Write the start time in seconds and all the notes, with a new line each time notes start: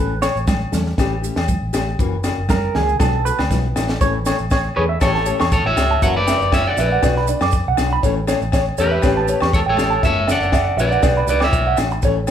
Already playing: A1 E3 A3 B4
0.00 C#4 A4
0.22 A3 C#5, snare, muted conga, low agogo, maracas
0.35 A1, maracas
0.47 kick, snare, high conga, low agogo, maracas
0.72 E2 A3 C#4 A4, snare, muted conga, high conga, maracas
0.86 snare
0.97 A1 E3 A3 C#4 G4, kick, snare, muted conga, low agogo, maracas
1.22 A3 C#4 G4, maracas
1.36 E2, snare, low agogo, maracas
1.48 kick, high conga, maracas
1.62 A1
1.73 A1 A3 G4, snare, low agogo, maracas
1.99 F#1 E3 A#3 C#4 F#4, kick, muted conga, maracas
2.24 C#4 F#4, snare, muted conga, low agogo, maracas
2.28 A#3
2.38 F#1
2.49 A#4, kick, snare, high conga, low agogo, maracas
2.74 C#2 A#3 C#4 F#4 G#4, snare, muted conga, low conga
2.88 maracas
2.99 B1 F#3 B3 D4 F#4 A4, kick, snare, muted conga, high conga, low agogo, maracas
3.25 B3 F#4 B4, muted nylon-string guitar stroke, maracas
3.39 D2, snare, low agogo
3.50 B1 E3 B3 E4 F#4, kick, snare, high conga, maracas
3.76 A1 B3 E4 F#4, snare, low agogo, maracas
3.89 snare, maracas
4.01 A1 E3 A3 C#4 A4 C#5, kick, snare, maracas
4.26 A3 C#4 A4 C#5, snare, low agogo, maracas
4.38 A1, maracas
4.50 C#5, kick, snare, low agogo, maracas
4.76 E2 C#4 G#4 A4 B4 C#5
4.81 A3
4.89 E5
5.01 A1 E3 A3 C#4 G4 A4 C#5, kick, snare, low agogo, maracas
5.15 A5, snare
5.26 C#4 G4 C#5, maracas
5.30 A3
5.40 E2 C#6, snare, low agogo, maracas
5.52 A4 C#5, kick, snare, maracas
5.65 A1 C#5 E5, muted clean electric guitar stroke
5.76 C#2 A3 C#4 G4, snare, low agogo, maracas
5.91 A5
6.02 F#1 E3 A#3 C#4 F#4 C#5 E5 F#5, kick, maracas
6.16 B4 D5
6.27 A#3 C#4 F#4 E5, snare, low agogo, maracas
6.40 F#1, maracas
6.52 C#5 E5, kick, snare, low agogo, maracas
6.67 D5 F#5
6.76 A#1 A#3 C#4 F#4 B4 D5 E5, snare, maracas
6.92 F#5
7.02 B1 F#3 B3 D4 F#4 D5, kick, snare, low agogo, maracas
7.16 B5, snare
7.26 B3 D4 F#4 D5, maracas
7.41 F#2 D6, snare, low agogo, maracas
7.52 kick, snare, maracas
7.67 B1 F#5
7.77 B1 B3 D4 F#4, snare, low agogo, maracas
7.93 B5
8.03 A1 E3 A3 C#4 A4 C#5, kick, snare, maracas
8.27 A3 C#4 A4 C#5, snare, low agogo, maracas
8.41 A1, maracas
8.52 C#5, kick, snare, low agogo, maracas
8.78 E2 A3 C#4 G4 A4 B4 C#5, maracas
8.91 E5
9.02 A1 E3 A3 C#4 G4 C#5, kick, snare, low agogo, maracas
9.17 A5
9.27 A3 C#4 G4 C#5, maracas
9.40 E2 C#6, snare, low agogo, maracas
9.53 A4 C#5, kick, snare, maracas
9.66 A1 A4 C#5 G5
9.77 A1 A3 C#4 G4, snare, low agogo, maracas
9.90 A5
10.03 F#1 E3 A#3 C#4 F#4 C#5 E5, kick, snare, maracas
10.27 A#3 C#4 F#4 D5 E5 F#5, snare, low agogo, maracas
10.41 F#1, maracas
10.52 E5, kick, snare, low agogo, maracas
10.77 A#1 C#4 F#4 B4 D5 E5, maracas
10.81 A#3
10.92 F#5, maracas
11.03 B1 B3 D4 F#4 D5, kick, snare, low agogo, maracas
11.17 B5
11.27 C#2 D4 F#4 B4 D5, maracas
11.40 C#5 E5 D6, snare, low agogo, maracas
11.52 B1, kick, maracas
11.67 F#5
11.77 A1 D4 F#4, snare, low agogo, maracas
11.91 muted clean electric guitar stroke, maracas
12.02 A1 E3 A3 C#4 A4 C#5, kick, snare, muted conga, maracas
12.27 A4, low agogo, maracas